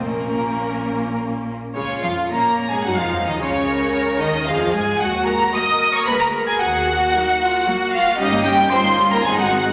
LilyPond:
<<
  \new Staff \with { instrumentName = "Violin section" } { \time 3/4 \key bes \minor \tempo 4 = 112 bes'2 r4 | des''8 f''8 bes''8. aes''16 ges''16 f''8 ees''16 | des''4. ees''8 f''8 aes''8 | ges''8 bes''8 ees'''8. des'''16 ces'''16 bes''8 aes''16 |
ges''2~ ges''8 f''8 | ees''8 g''8 c'''8. bes''16 aes''16 ges''8. | }
  \new Staff \with { instrumentName = "Violin section" } { \time 3/4 \key bes \minor <f' bes'>2~ <f' bes'>8 r8 | des'8 f'8 bes'8. aes'16 ges'16 f'8 ees'16 | des'4. ees'8 f'8 aes'8 | ges'8 bes'8 ees''8. des''16 ces''16 bes'8 aes'16 |
ges'2~ ges'8 f'8 | ees'8 g'8 c''8. bes'16 aes'16 ges'8. | }
  \new Staff \with { instrumentName = "Cello section" } { \time 3/4 \key bes \minor bes,2~ bes,8 r8 | f'4 des'4 ees'4 | f'8 bes'4. aes'4 | ges'4 bes'2 |
aes'8 ges'8 ees'8 f'8 ges'4 | g'4 f'4 ees'4 | }
  \new Staff \with { instrumentName = "Viola section" } { \time 3/4 \key bes \minor <bes des'>2~ <bes des'>8. r16 | des8 f8 bes8. aes16 ges16 f8 ees16 | des4. ees8 f8 aes8 | r4 <ges bes>8. r16 <aes bes>8. r16 |
r4 <ges bes>8. r16 <ges bes>8. r16 | <g des'>16 <bes ees'>16 <g des'>16 <bes ees'>16 <g des'>16 <bes ees'>16 <g des'>16 <bes ees'>16 <ees c'>16 <aes ees'>16 <ees c'>16 <aes ees'>16 | }
  \new Staff \with { instrumentName = "French horn section" } { \clef bass \time 3/4 \key bes \minor << { r2. | des8 f8 bes8. aes16 ges16 f8 ees16 | des4. ees8 f8 aes8 | ges'2 aes'4 |
ges'2. | des'2 c'4 | } \\ { r2. | r2. | r2. | bes2.~ |
bes2. | bes2 aes4 | } >> }
  \new Staff \with { instrumentName = "Double bass section" } { \clef bass \time 3/4 \key bes \minor bes,,2~ bes,,8 r8 | des,8 f,8 bes,8. aes,16 ges,16 f,8 ees,16 | des,4. ees,8 f,8 aes,8 | ees,4 r4 d,4 |
ees,4 r2 | g,,4 g,,4 aes,,4 | }
>>